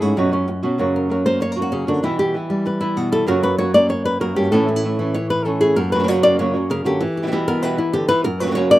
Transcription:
Already playing: nylon-string guitar G#4
0.01 nylon-string guitar G#2 A3 C#4 E4 F#4
0.16 nylon-string guitar F#2 B2 F#3 B3 C#4 F#4
0.32 nylon-string guitar F#3 B3 C#4 F#4
0.48 muted nylon-string guitar stroke
0.63 nylon-string guitar B2 F#3 B3 C#4 F#4
0.78 nylon-string guitar F#2 C#3 F#3 A#3 C#4 F#4
0.96 nylon-string guitar A#4
1.09 nylon-string guitar F#3 A#3 C#4 F#4 A#4
1.26 nylon-string guitar A#3 C5
1.40 nylon-string guitar C#5, muted nylon-string guitar stroke
1.52 nylon-string guitar A#4
1.56 nylon-string guitar F#3 A#3 C#4 F#4
1.62 nylon-string guitar F#4
1.72 nylon-string guitar C#3 C#4
1.87 nylon-string guitar D3 F#3 A#3 C#4 D4 F#4
2.03 nylon-string guitar E2 B2 E3 G3 B3 E4
2.19 nylon-string guitar G4
2.34 nylon-string guitar E3 G3 B3 E4
2.50 nylon-string guitar G3
2.65 nylon-string guitar B4, muted nylon-string guitar stroke
2.81 nylon-string guitar E3 G3 B3 E4
2.97 nylon-string guitar B2 F#4
3.12 nylon-string guitar E3 G3 B3 E4 A4
3.27 nylon-string guitar F#2 C#3 F#3 A#3 C#4 F#4 A#4
3.43 nylon-string guitar F#3 A#3 C#4 F#4 B4
3.58 nylon-string guitar F#3 A#3 C#4 F#4 C#5
3.74 nylon-string guitar F#3 A#3 C#4 F#4 D5
3.89 nylon-string guitar C#5, muted nylon-string guitar stroke
4.05 nylon-string guitar B4
4.20 nylon-string guitar F#2 F#3 A#3 C#4 F#4 A#4
4.36 nylon-string guitar G2 F#3 A#3 C#4 F#4 G4
4.51 nylon-string guitar A2 E3 A3 C#4 E4 A4
4.67 nylon-string guitar A3 C#4 E4
4.76 nylon-string guitar E4
4.83 nylon-string guitar E3 A3 C#4 E4
4.99 nylon-string guitar E3 A3 C#4 E4
5.14 nylon-string guitar C#5, muted nylon-string guitar stroke
5.30 nylon-string guitar B4
5.45 nylon-string guitar E3 A3 C#4 E4 A4
5.61 nylon-string guitar A3 C#4 E4 G#4
5.76 nylon-string guitar F#2 A#3 A#4, muted nylon-string guitar stroke
5.92 nylon-string guitar C#3 F#3 A#3 C#4 F#4 B4
5.99 nylon-string guitar C#3 F#3 A#3 C#4 F#4
6.03 nylon-string guitar C#3 F#3 A#3 C#4 F#4
6.08 nylon-string guitar F#2 C#3 F#3 A#3 C#4 F#4 C#5
6.23 nylon-string guitar A#3 D5
6.39 nylon-string guitar F#2 C#3 F#3 A#3 C#4 F#4 C#5
6.54 nylon-string guitar F#3 A#3 C#4 F#4
6.70 nylon-string guitar C#3 A#4, muted nylon-string guitar stroke
6.85 nylon-string guitar D3 F#3 A#3 C#4 F#4 G4
7.01 nylon-string guitar E3, muted nylon-string guitar stroke
7.17 nylon-string guitar G4
7.23 nylon-string guitar B2 E3 G3 B3 E4
7.27 nylon-string guitar B2 E3 G3 B3 E4
7.32 nylon-string guitar E2 B2 E3 G3 B3 E4 G4
7.48 nylon-string guitar B3 A#4
7.62 nylon-string guitar E2 B2 E3 G3 B3 E4 B4
7.77 nylon-string guitar E3 G3 B3 E4
7.93 nylon-string guitar D3 G4, muted nylon-string guitar stroke
8.09 nylon-string guitar E3 G3 B3 E4 B4
8.24 nylon-string guitar F#2 A#4, muted nylon-string guitar stroke
8.40 nylon-string guitar C#3 F#3 A#3 C#4 F#4 B4
8.47 nylon-string guitar C#3 F#3 A#3 C#4 F#4
8.51 nylon-string guitar C#3 F#3 A#3 C#4 F#4 C#5
8.56 nylon-string guitar F#2 C#3 F#3 A#3 C#4 F#4
8.71 nylon-string guitar A#3 D5

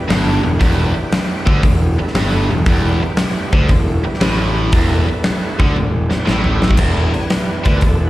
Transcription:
Already playing: tonewheel organ G3 B3 E4 G4
0.08 picked electric bass G1, distorted electric guitar G2, snare, open hi-hat
0.43 picked electric bass E1, distorted electric guitar E2
0.57 picked electric bass E1, distorted electric guitar E2, tonewheel organ G3 B3 E4 G4, kick, open hi-hat
0.94 muted distorted electric guitar stroke, muted picked electric bass stroke
1.12 snare, open hi-hat
1.46 picked electric bass D2, distorted electric guitar D3, kick
1.63 picked electric bass E1, distorted electric guitar E2, kick, open hi-hat
1.96 tonewheel organ G3 B3 E4 A4, muted distorted electric guitar stroke, muted picked electric bass stroke
2.07 snare
2.15 picked electric bass G1, distorted electric guitar G2, snare, open hi-hat
2.50 picked electric bass E1, distorted electric guitar E2
2.66 picked electric bass E1, distorted electric guitar E2, tonewheel organ G3 B3 E4 G4, kick, open hi-hat
3.03 muted distorted electric guitar stroke, muted picked electric bass stroke
3.17 snare, open hi-hat
3.53 picked electric bass D2, distorted electric guitar D3, kick
3.69 picked electric bass E1, distorted electric guitar E2, kick, open hi-hat
4.04 tonewheel organ G3 B3 E4 G4, muted distorted electric guitar stroke, muted picked electric bass stroke
4.14 snare
4.21 picked electric bass A1, distorted electric guitar A2, snare, open hi-hat
4.72 picked electric bass E1, distorted electric guitar E2, tonewheel organ G3 B3 E4 A4, kick, open hi-hat
5.08 muted picked electric bass stroke, muted distorted electric guitar stroke
5.24 snare, open hi-hat
5.59 picked electric bass D2, distorted electric guitar D3, kick
5.76 picked electric bass E1, distorted electric guitar E2, high tom
6.10 tonewheel organ G3 B3 E4 G4, muted distorted electric guitar stroke, muted picked electric bass stroke, snare
6.26 picked electric bass A1, distorted electric guitar A2, snare
6.44 mid tom
6.62 snare
6.71 kick
6.77 picked electric bass E1, distorted electric guitar E2, kick, crash
7.13 tonewheel organ E3 G3, muted distorted electric guitar stroke, muted picked electric bass stroke, open hi-hat
7.18 tonewheel organ B3
7.30 snare, open hi-hat
7.64 picked electric bass D2, distorted electric guitar D3, tonewheel organ B4, kick, open hi-hat
7.81 picked electric bass E1, distorted electric guitar E2, kick, open hi-hat
7.87 tonewheel organ A4
8.04 tonewheel organ B4

